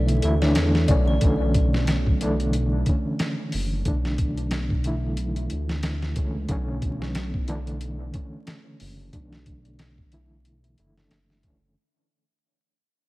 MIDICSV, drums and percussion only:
0, 0, Header, 1, 2, 480
1, 0, Start_track
1, 0, Key_signature, 2, "minor"
1, 0, Tempo, 659341
1, 885, Time_signature, 4, 2, 24, 8
1, 9527, End_track
2, 0, Start_track
2, 0, Title_t, "Drums"
2, 61, Note_on_c, 9, 42, 48
2, 134, Note_off_c, 9, 42, 0
2, 163, Note_on_c, 9, 42, 71
2, 235, Note_off_c, 9, 42, 0
2, 305, Note_on_c, 9, 38, 59
2, 378, Note_off_c, 9, 38, 0
2, 401, Note_on_c, 9, 42, 94
2, 405, Note_on_c, 9, 38, 115
2, 474, Note_off_c, 9, 42, 0
2, 478, Note_off_c, 9, 38, 0
2, 546, Note_on_c, 9, 38, 49
2, 618, Note_off_c, 9, 38, 0
2, 642, Note_on_c, 9, 42, 70
2, 644, Note_on_c, 9, 36, 102
2, 714, Note_off_c, 9, 42, 0
2, 716, Note_off_c, 9, 36, 0
2, 881, Note_on_c, 9, 42, 85
2, 885, Note_on_c, 9, 36, 107
2, 954, Note_off_c, 9, 42, 0
2, 957, Note_off_c, 9, 36, 0
2, 1124, Note_on_c, 9, 42, 64
2, 1125, Note_on_c, 9, 36, 93
2, 1197, Note_off_c, 9, 42, 0
2, 1198, Note_off_c, 9, 36, 0
2, 1269, Note_on_c, 9, 38, 51
2, 1342, Note_off_c, 9, 38, 0
2, 1363, Note_on_c, 9, 42, 82
2, 1367, Note_on_c, 9, 38, 114
2, 1436, Note_off_c, 9, 42, 0
2, 1440, Note_off_c, 9, 38, 0
2, 1505, Note_on_c, 9, 36, 80
2, 1578, Note_off_c, 9, 36, 0
2, 1607, Note_on_c, 9, 42, 72
2, 1680, Note_off_c, 9, 42, 0
2, 1746, Note_on_c, 9, 42, 42
2, 1819, Note_off_c, 9, 42, 0
2, 1843, Note_on_c, 9, 42, 82
2, 1916, Note_off_c, 9, 42, 0
2, 2082, Note_on_c, 9, 42, 64
2, 2085, Note_on_c, 9, 36, 90
2, 2155, Note_off_c, 9, 42, 0
2, 2157, Note_off_c, 9, 36, 0
2, 2325, Note_on_c, 9, 42, 88
2, 2328, Note_on_c, 9, 38, 112
2, 2397, Note_off_c, 9, 42, 0
2, 2401, Note_off_c, 9, 38, 0
2, 2564, Note_on_c, 9, 46, 81
2, 2637, Note_off_c, 9, 46, 0
2, 2805, Note_on_c, 9, 42, 88
2, 2806, Note_on_c, 9, 36, 108
2, 2878, Note_off_c, 9, 36, 0
2, 2878, Note_off_c, 9, 42, 0
2, 2949, Note_on_c, 9, 38, 47
2, 3021, Note_off_c, 9, 38, 0
2, 3045, Note_on_c, 9, 36, 97
2, 3045, Note_on_c, 9, 42, 67
2, 3117, Note_off_c, 9, 42, 0
2, 3118, Note_off_c, 9, 36, 0
2, 3185, Note_on_c, 9, 42, 37
2, 3258, Note_off_c, 9, 42, 0
2, 3282, Note_on_c, 9, 42, 86
2, 3285, Note_on_c, 9, 38, 109
2, 3355, Note_off_c, 9, 42, 0
2, 3358, Note_off_c, 9, 38, 0
2, 3424, Note_on_c, 9, 36, 84
2, 3497, Note_off_c, 9, 36, 0
2, 3524, Note_on_c, 9, 42, 68
2, 3597, Note_off_c, 9, 42, 0
2, 3764, Note_on_c, 9, 42, 78
2, 3836, Note_off_c, 9, 42, 0
2, 3903, Note_on_c, 9, 42, 43
2, 3976, Note_off_c, 9, 42, 0
2, 4003, Note_on_c, 9, 42, 62
2, 4076, Note_off_c, 9, 42, 0
2, 4145, Note_on_c, 9, 38, 54
2, 4218, Note_off_c, 9, 38, 0
2, 4242, Note_on_c, 9, 42, 81
2, 4246, Note_on_c, 9, 38, 108
2, 4315, Note_off_c, 9, 42, 0
2, 4319, Note_off_c, 9, 38, 0
2, 4386, Note_on_c, 9, 38, 43
2, 4458, Note_off_c, 9, 38, 0
2, 4483, Note_on_c, 9, 42, 68
2, 4484, Note_on_c, 9, 36, 87
2, 4556, Note_off_c, 9, 42, 0
2, 4557, Note_off_c, 9, 36, 0
2, 4722, Note_on_c, 9, 42, 82
2, 4723, Note_on_c, 9, 36, 108
2, 4794, Note_off_c, 9, 42, 0
2, 4796, Note_off_c, 9, 36, 0
2, 4965, Note_on_c, 9, 36, 94
2, 4965, Note_on_c, 9, 42, 62
2, 5037, Note_off_c, 9, 36, 0
2, 5038, Note_off_c, 9, 42, 0
2, 5110, Note_on_c, 9, 38, 47
2, 5182, Note_off_c, 9, 38, 0
2, 5204, Note_on_c, 9, 42, 83
2, 5207, Note_on_c, 9, 38, 110
2, 5277, Note_off_c, 9, 42, 0
2, 5280, Note_off_c, 9, 38, 0
2, 5343, Note_on_c, 9, 36, 80
2, 5416, Note_off_c, 9, 36, 0
2, 5443, Note_on_c, 9, 42, 63
2, 5516, Note_off_c, 9, 42, 0
2, 5584, Note_on_c, 9, 42, 41
2, 5657, Note_off_c, 9, 42, 0
2, 5684, Note_on_c, 9, 42, 74
2, 5756, Note_off_c, 9, 42, 0
2, 5924, Note_on_c, 9, 42, 65
2, 5925, Note_on_c, 9, 36, 87
2, 5996, Note_off_c, 9, 42, 0
2, 5998, Note_off_c, 9, 36, 0
2, 6165, Note_on_c, 9, 42, 75
2, 6169, Note_on_c, 9, 38, 104
2, 6238, Note_off_c, 9, 42, 0
2, 6242, Note_off_c, 9, 38, 0
2, 6406, Note_on_c, 9, 46, 75
2, 6479, Note_off_c, 9, 46, 0
2, 6646, Note_on_c, 9, 42, 79
2, 6647, Note_on_c, 9, 36, 96
2, 6719, Note_off_c, 9, 42, 0
2, 6720, Note_off_c, 9, 36, 0
2, 6789, Note_on_c, 9, 38, 47
2, 6862, Note_off_c, 9, 38, 0
2, 6887, Note_on_c, 9, 36, 88
2, 6887, Note_on_c, 9, 42, 60
2, 6959, Note_off_c, 9, 42, 0
2, 6960, Note_off_c, 9, 36, 0
2, 7025, Note_on_c, 9, 42, 35
2, 7098, Note_off_c, 9, 42, 0
2, 7126, Note_on_c, 9, 42, 76
2, 7130, Note_on_c, 9, 38, 107
2, 7199, Note_off_c, 9, 42, 0
2, 7202, Note_off_c, 9, 38, 0
2, 7266, Note_on_c, 9, 36, 81
2, 7339, Note_off_c, 9, 36, 0
2, 7366, Note_on_c, 9, 42, 64
2, 7438, Note_off_c, 9, 42, 0
2, 7608, Note_on_c, 9, 42, 68
2, 7680, Note_off_c, 9, 42, 0
2, 7746, Note_on_c, 9, 42, 40
2, 7819, Note_off_c, 9, 42, 0
2, 7846, Note_on_c, 9, 42, 55
2, 7919, Note_off_c, 9, 42, 0
2, 7990, Note_on_c, 9, 38, 52
2, 8063, Note_off_c, 9, 38, 0
2, 8086, Note_on_c, 9, 42, 72
2, 8090, Note_on_c, 9, 38, 100
2, 8159, Note_off_c, 9, 42, 0
2, 8162, Note_off_c, 9, 38, 0
2, 8227, Note_on_c, 9, 38, 40
2, 8299, Note_off_c, 9, 38, 0
2, 8322, Note_on_c, 9, 42, 63
2, 8325, Note_on_c, 9, 36, 81
2, 8395, Note_off_c, 9, 42, 0
2, 8398, Note_off_c, 9, 36, 0
2, 9527, End_track
0, 0, End_of_file